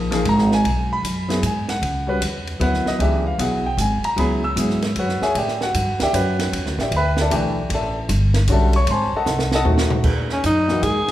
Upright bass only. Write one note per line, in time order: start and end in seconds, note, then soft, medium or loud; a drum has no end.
0.00 0.24 A#1 medium
0.25 0.64 G#1 loud
0.64 1.02 B1 medium
1.03 1.41 F#2 medium
1.42 1.81 G#2 loud
1.82 2.20 C#2 medium
2.21 2.59 E2 medium
2.60 2.84 D2 medium
2.85 muted upright bass stroke soft
2.99 3.37 C#2 medium
3.38 3.77 B1 medium
3.77 4.02 G#1 medium
4.03 muted upright bass stroke soft
4.16 4.55 C#2 medium
4.56 4.94 G#2 medium
4.96 5.20 F#2 medium
5.21 muted upright bass stroke soft
5.35 5.73 A2 medium
5.74 5.89 G2 medium
5.87 6.00 E2 soft
6.00 6.12 D2 medium
6.13 6.51 F#2 medium
6.52 6.66 E2 medium
6.66 6.78 D2 medium
6.78 6.91 A1 medium
6.91 7.29 D2 medium
7.31 7.69 B1 medium
7.70 8.08 A1 medium
8.09 8.47 G1 loud
8.48 8.86 B1 loud
8.87 9.11 G#1 loud
9.12 muted upright bass stroke soft
9.26 9.64 C2 loud
9.65 10.03 D#2 loud
10.03 10.42 E2 medium
10.44 10.82 F#2 medium
10.82 11.06 G#2 medium
11.08 muted upright bass stroke soft